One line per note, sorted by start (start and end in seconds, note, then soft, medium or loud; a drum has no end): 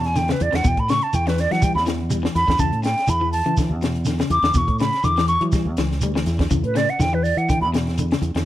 0.00 0.32 E2 medium
0.00 closed hi-hat soft
0.05 0.18 G#5 medium
0.05 snare soft
0.16 0.23 D3 medium
0.16 0.33 G5 medium
0.16 snare soft
0.16 closed hi-hat medium
0.16 shekere medium
0.28 0.43 C#3 medium
0.28 0.44 B4 medium
0.28 snare medium
0.28 closed hi-hat soft
0.40 0.51 E2 medium
0.40 0.57 D5 medium
0.40 closed hi-hat soft
0.40 shekere soft
0.52 0.63 E2 medium
0.52 0.59 D3 medium
0.52 0.69 F#5 medium
0.52 snare medium
0.52 closed hi-hat soft
0.64 0.76 E2 medium
0.64 0.78 B2 medium
0.64 0.81 G5 medium
0.64 kick medium
0.64 closed hi-hat medium
0.64 shekere medium
0.77 0.98 A2 medium
0.77 0.91 B5 medium
0.77 kick medium
0.77 closed hi-hat soft
0.89 1.03 C#3 medium
0.89 1.05 C#6 loud
0.89 snare medium
0.89 closed hi-hat medium
0.89 shekere soft
1.02 1.16 A5 medium
1.02 closed hi-hat soft
1.13 1.46 E2 loud
1.13 1.29 G5 medium
1.13 muted clean electric guitar stroke medium
1.13 closed hi-hat medium
1.13 shekere medium
1.27 1.41 E3 medium
1.27 1.42 B4 medium
1.27 snare medium
1.27 closed hi-hat soft
1.38 1.53 D5 medium
1.38 snare soft
1.38 closed hi-hat medium
1.38 shekere soft
1.51 1.76 E3 medium
1.51 1.58 F#3 medium
1.51 1.65 F#5 medium
1.51 snare soft
1.51 closed hi-hat soft
1.62 1.76 G3 medium
1.62 1.75 G5 medium
1.62 kick medium
1.62 closed hi-hat medium
1.62 shekere medium
1.75 2.27 E2 medium
1.75 1.82 B5 loud
1.75 snare soft
1.86 2.00 E3 medium
1.86 snare medium
1.86 closed hi-hat medium
1.86 shekere soft
2.10 2.18 G3 medium
2.10 closed hi-hat medium
2.10 shekere medium
2.23 2.37 E3 medium
2.23 snare medium
2.35 2.46 E2 loud
2.35 2.61 B5 loud
2.35 snare soft
2.35 closed hi-hat medium
2.35 shekere soft
2.48 2.58 E2 medium
2.48 2.54 D3 medium
2.48 kick medium
2.48 snare medium
2.48 closed hi-hat soft
2.59 2.71 E2 medium
2.59 2.73 C#3 medium
2.59 2.83 A5 medium
2.59 kick medium
2.59 closed hi-hat medium
2.59 shekere medium
2.72 2.93 A2 medium
2.72 closed hi-hat soft
2.83 3.11 G5 medium
2.83 muted clean electric guitar stroke medium
2.83 snare medium
2.83 closed hi-hat medium
2.83 shekere soft
2.98 snare soft
2.98 closed hi-hat soft
3.07 3.41 E2 loud
3.07 3.32 B5 loud
3.07 muted clean electric guitar stroke medium
3.07 closed hi-hat medium
3.07 shekere medium
3.21 3.35 E3 medium
3.33 3.56 A5 medium
3.33 open hi-hat medium
3.33 shekere soft
3.46 3.53 C#3 medium
3.46 3.71 E3 medium
3.46 closed hi-hat soft
3.57 3.72 D3 medium
3.57 kick medium
3.57 snare soft
3.57 closed hi-hat medium
3.57 shekere medium
3.69 4.22 E2 medium
3.81 3.96 B2 medium
3.81 snare medium
3.81 closed hi-hat soft
3.81 shekere soft
3.96 closed hi-hat soft
4.05 4.14 D3 medium
4.05 snare soft
4.05 closed hi-hat medium
4.05 shekere medium
4.19 4.34 C#3 medium
4.19 snare medium
4.19 closed hi-hat soft
4.30 4.42 E2 loud
4.30 4.59 D6 loud
4.30 closed hi-hat medium
4.30 shekere soft
4.42 4.53 E2 medium
4.42 4.51 D3 medium
4.42 snare medium
4.42 closed hi-hat soft
4.54 4.66 E2 medium
4.54 4.70 B2 medium
4.54 4.79 C#6 medium
4.54 kick medium
4.54 closed hi-hat medium
4.54 shekere medium
4.67 4.89 A2 medium
4.67 kick medium
4.67 closed hi-hat soft
4.79 4.94 C#3 medium
4.79 5.06 B5 medium
4.79 snare medium
4.79 closed hi-hat soft
4.79 shekere soft
4.93 snare soft
4.93 closed hi-hat soft
5.03 5.36 E2 loud
5.03 5.12 D3 medium
5.03 5.28 D6 loud
5.03 closed hi-hat medium
5.03 shekere medium
5.17 5.32 E3 medium
5.17 snare medium
5.17 closed hi-hat soft
5.28 5.43 C#6 loud
5.28 closed hi-hat medium
5.28 shekere soft
5.41 5.67 E3 medium
5.41 5.49 F#3 medium
5.41 closed hi-hat soft
5.52 5.67 G3 medium
5.52 kick medium
5.52 snare soft
5.52 closed hi-hat medium
5.52 shekere medium
5.65 5.76 E2 medium
5.77 6.00 C#2 medium
5.77 5.92 E3 medium
5.77 snare medium
5.77 closed hi-hat medium
5.77 shekere soft
5.91 snare soft
6.01 6.24 D2 medium
6.01 6.10 G3 medium
6.01 closed hi-hat medium
6.01 shekere medium
6.15 6.29 E3 medium
6.15 snare medium
6.26 6.49 E2 medium
6.26 snare soft
6.26 closed hi-hat medium
6.26 shekere soft
6.39 6.46 D3 medium
6.39 kick medium
6.39 snare medium
6.39 closed hi-hat soft
6.51 6.62 E2 medium
6.51 6.65 C#3 medium
6.51 kick medium
6.51 closed hi-hat medium
6.51 shekere medium
6.63 6.85 A2 medium
6.63 6.78 B4 medium
6.63 closed hi-hat soft
6.75 6.89 C#3 medium
6.75 6.91 D5 loud
6.75 snare medium
6.75 closed hi-hat medium
6.75 shekere soft
6.89 7.03 F#5 medium
6.89 closed hi-hat soft
6.99 7.32 E2 loud
6.99 7.07 D3 medium
6.99 7.16 G5 medium
6.99 snare soft
6.99 closed hi-hat medium
6.99 shekere medium
7.13 7.27 E3 medium
7.13 7.25 B4 medium
7.23 7.39 D5 medium
7.23 open hi-hat medium
7.23 shekere soft
7.37 7.62 E3 medium
7.37 7.51 F#5 medium
7.37 closed hi-hat soft
7.49 7.63 D3 medium
7.49 7.61 G5 medium
7.49 kick medium
7.49 closed hi-hat medium
7.49 shekere medium
7.61 8.14 E2 medium
7.61 7.69 B5 medium
7.74 7.88 B2 medium
7.74 snare medium
7.74 closed hi-hat medium
7.74 shekere soft
7.87 snare soft
7.87 closed hi-hat soft
7.98 8.06 D3 medium
7.98 closed hi-hat medium
7.98 shekere medium
8.11 8.26 C#3 medium
8.11 snare medium
8.11 closed hi-hat soft
8.22 8.33 E2 loud
8.22 closed hi-hat medium
8.22 shekere soft
8.35 8.45 E2 medium
8.35 8.43 D3 medium
8.35 snare medium
8.35 closed hi-hat soft